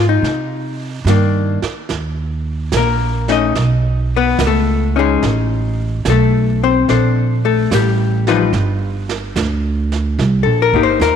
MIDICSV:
0, 0, Header, 1, 5, 480
1, 0, Start_track
1, 0, Tempo, 827586
1, 142, Time_signature, 4, 2, 24, 8
1, 6472, End_track
2, 0, Start_track
2, 0, Title_t, "Hollow-body jazz guitar"
2, 0, Program_c, 0, 26
2, 52, Note_on_c, 0, 63, 73
2, 517, Note_off_c, 0, 63, 0
2, 631, Note_on_c, 0, 51, 46
2, 632, Note_on_c, 0, 58, 52
2, 638, Note_on_c, 0, 62, 47
2, 919, Note_off_c, 0, 51, 0
2, 920, Note_off_c, 0, 58, 0
2, 923, Note_off_c, 0, 62, 0
2, 1606, Note_on_c, 0, 70, 72
2, 1615, Note_on_c, 0, 58, 57
2, 1906, Note_off_c, 0, 58, 0
2, 1908, Note_on_c, 0, 57, 49
2, 1909, Note_on_c, 0, 61, 57
2, 1911, Note_off_c, 0, 70, 0
2, 1913, Note_on_c, 0, 63, 58
2, 1925, Note_on_c, 0, 75, 91
2, 2051, Note_off_c, 0, 57, 0
2, 2052, Note_off_c, 0, 61, 0
2, 2054, Note_off_c, 0, 63, 0
2, 2376, Note_off_c, 0, 75, 0
2, 2415, Note_on_c, 0, 59, 74
2, 2419, Note_on_c, 0, 71, 78
2, 2557, Note_off_c, 0, 59, 0
2, 2558, Note_off_c, 0, 71, 0
2, 2592, Note_on_c, 0, 69, 73
2, 2597, Note_on_c, 0, 57, 61
2, 2876, Note_on_c, 0, 61, 65
2, 2877, Note_off_c, 0, 69, 0
2, 2880, Note_on_c, 0, 63, 72
2, 2887, Note_off_c, 0, 57, 0
2, 2894, Note_on_c, 0, 68, 80
2, 2899, Note_on_c, 0, 56, 62
2, 3037, Note_off_c, 0, 68, 0
2, 3039, Note_off_c, 0, 56, 0
2, 3481, Note_off_c, 0, 61, 0
2, 3483, Note_off_c, 0, 63, 0
2, 3536, Note_on_c, 0, 69, 77
2, 3549, Note_on_c, 0, 57, 64
2, 3836, Note_off_c, 0, 69, 0
2, 3843, Note_off_c, 0, 57, 0
2, 3848, Note_on_c, 0, 60, 70
2, 3851, Note_on_c, 0, 72, 78
2, 3994, Note_off_c, 0, 72, 0
2, 3997, Note_on_c, 0, 62, 49
2, 4001, Note_on_c, 0, 69, 56
2, 4001, Note_on_c, 0, 72, 53
2, 4296, Note_off_c, 0, 60, 0
2, 4315, Note_off_c, 0, 69, 0
2, 4321, Note_on_c, 0, 57, 63
2, 4324, Note_on_c, 0, 69, 74
2, 4469, Note_off_c, 0, 57, 0
2, 4469, Note_off_c, 0, 69, 0
2, 4489, Note_on_c, 0, 55, 52
2, 4493, Note_on_c, 0, 67, 74
2, 4730, Note_off_c, 0, 62, 0
2, 4731, Note_off_c, 0, 72, 0
2, 4791, Note_off_c, 0, 55, 0
2, 4793, Note_off_c, 0, 67, 0
2, 4801, Note_on_c, 0, 63, 63
2, 4802, Note_on_c, 0, 55, 61
2, 4803, Note_on_c, 0, 65, 66
2, 4807, Note_on_c, 0, 71, 64
2, 4817, Note_on_c, 0, 53, 67
2, 4904, Note_off_c, 0, 53, 0
2, 4937, Note_off_c, 0, 55, 0
2, 4937, Note_off_c, 0, 63, 0
2, 4938, Note_off_c, 0, 65, 0
2, 4940, Note_off_c, 0, 71, 0
2, 6050, Note_on_c, 0, 69, 77
2, 6161, Note_on_c, 0, 70, 87
2, 6214, Note_off_c, 0, 69, 0
2, 6232, Note_on_c, 0, 58, 62
2, 6239, Note_on_c, 0, 63, 68
2, 6240, Note_on_c, 0, 67, 68
2, 6269, Note_off_c, 0, 70, 0
2, 6283, Note_on_c, 0, 72, 86
2, 6370, Note_off_c, 0, 72, 0
2, 6392, Note_on_c, 0, 70, 81
2, 6472, Note_off_c, 0, 58, 0
2, 6472, Note_off_c, 0, 63, 0
2, 6472, Note_off_c, 0, 67, 0
2, 6472, Note_off_c, 0, 70, 0
2, 6472, End_track
3, 0, Start_track
3, 0, Title_t, "Upright bass"
3, 0, Program_c, 1, 32
3, 0, Note_on_c, 1, 44, 88
3, 121, Note_off_c, 1, 44, 0
3, 128, Note_on_c, 1, 48, 70
3, 603, Note_off_c, 1, 48, 0
3, 607, Note_on_c, 1, 43, 84
3, 917, Note_off_c, 1, 43, 0
3, 1101, Note_on_c, 1, 39, 83
3, 1570, Note_off_c, 1, 39, 0
3, 1578, Note_on_c, 1, 34, 83
3, 2050, Note_off_c, 1, 34, 0
3, 2065, Note_on_c, 1, 35, 76
3, 2533, Note_off_c, 1, 35, 0
3, 2544, Note_on_c, 1, 37, 88
3, 3013, Note_off_c, 1, 37, 0
3, 3032, Note_on_c, 1, 33, 90
3, 3497, Note_off_c, 1, 33, 0
3, 3512, Note_on_c, 1, 35, 92
3, 3976, Note_off_c, 1, 35, 0
3, 3992, Note_on_c, 1, 34, 76
3, 4455, Note_off_c, 1, 34, 0
3, 4473, Note_on_c, 1, 33, 94
3, 4936, Note_off_c, 1, 33, 0
3, 4946, Note_on_c, 1, 31, 93
3, 5411, Note_off_c, 1, 31, 0
3, 5427, Note_on_c, 1, 38, 97
3, 5891, Note_off_c, 1, 38, 0
3, 5908, Note_on_c, 1, 36, 88
3, 6060, Note_off_c, 1, 36, 0
3, 6060, Note_on_c, 1, 34, 50
3, 6217, Note_off_c, 1, 34, 0
3, 6221, Note_on_c, 1, 31, 62
3, 6370, Note_off_c, 1, 31, 0
3, 6379, Note_on_c, 1, 39, 88
3, 6472, Note_off_c, 1, 39, 0
3, 6472, End_track
4, 0, Start_track
4, 0, Title_t, "Muted upright bass strokes"
4, 941, Note_on_c, 9, 29, 35
4, 999, Note_off_c, 9, 29, 0
4, 6472, End_track
5, 0, Start_track
5, 0, Title_t, "Drums"
5, 140, Note_on_c, 9, 25, 47
5, 140, Note_on_c, 9, 38, 38
5, 198, Note_off_c, 9, 38, 0
5, 619, Note_on_c, 9, 38, 54
5, 619, Note_on_c, 9, 44, 52
5, 677, Note_off_c, 9, 38, 0
5, 677, Note_off_c, 9, 44, 0
5, 942, Note_on_c, 9, 38, 40
5, 1000, Note_off_c, 9, 38, 0
5, 1096, Note_off_c, 9, 25, 0
5, 1096, Note_on_c, 9, 25, 51
5, 1096, Note_on_c, 9, 38, 37
5, 1154, Note_off_c, 9, 38, 0
5, 1577, Note_on_c, 9, 38, 54
5, 1577, Note_on_c, 9, 44, 64
5, 1635, Note_off_c, 9, 38, 0
5, 1635, Note_off_c, 9, 44, 0
5, 1903, Note_on_c, 9, 38, 37
5, 1961, Note_off_c, 9, 38, 0
5, 2060, Note_off_c, 9, 25, 0
5, 2060, Note_on_c, 9, 25, 45
5, 2060, Note_on_c, 9, 38, 39
5, 2118, Note_off_c, 9, 38, 0
5, 2544, Note_on_c, 9, 38, 57
5, 2544, Note_on_c, 9, 44, 57
5, 2602, Note_off_c, 9, 38, 0
5, 2602, Note_off_c, 9, 44, 0
5, 3030, Note_off_c, 9, 25, 0
5, 3030, Note_on_c, 9, 25, 48
5, 3030, Note_on_c, 9, 38, 38
5, 3088, Note_off_c, 9, 38, 0
5, 3509, Note_on_c, 9, 38, 57
5, 3509, Note_on_c, 9, 44, 50
5, 3567, Note_off_c, 9, 38, 0
5, 3567, Note_off_c, 9, 44, 0
5, 3995, Note_off_c, 9, 25, 0
5, 3995, Note_on_c, 9, 25, 45
5, 3995, Note_on_c, 9, 38, 44
5, 4053, Note_off_c, 9, 38, 0
5, 4475, Note_on_c, 9, 38, 59
5, 4475, Note_on_c, 9, 44, 63
5, 4533, Note_off_c, 9, 38, 0
5, 4533, Note_off_c, 9, 44, 0
5, 4796, Note_on_c, 9, 38, 42
5, 4854, Note_off_c, 9, 38, 0
5, 4949, Note_off_c, 9, 25, 0
5, 4949, Note_on_c, 9, 25, 44
5, 4949, Note_on_c, 9, 38, 44
5, 5007, Note_off_c, 9, 38, 0
5, 5274, Note_on_c, 9, 38, 54
5, 5332, Note_off_c, 9, 38, 0
5, 5430, Note_on_c, 9, 38, 55
5, 5430, Note_on_c, 9, 44, 60
5, 5488, Note_off_c, 9, 38, 0
5, 5488, Note_off_c, 9, 44, 0
5, 5753, Note_on_c, 9, 38, 38
5, 5811, Note_off_c, 9, 38, 0
5, 5912, Note_off_c, 9, 25, 0
5, 5912, Note_on_c, 9, 25, 41
5, 5912, Note_on_c, 9, 38, 43
5, 5970, Note_off_c, 9, 38, 0
5, 6228, Note_on_c, 9, 36, 58
5, 6286, Note_off_c, 9, 36, 0
5, 6387, Note_on_c, 9, 38, 54
5, 6387, Note_on_c, 9, 44, 56
5, 6445, Note_off_c, 9, 38, 0
5, 6445, Note_off_c, 9, 44, 0
5, 6472, Note_off_c, 9, 25, 0
5, 6472, End_track
0, 0, End_of_file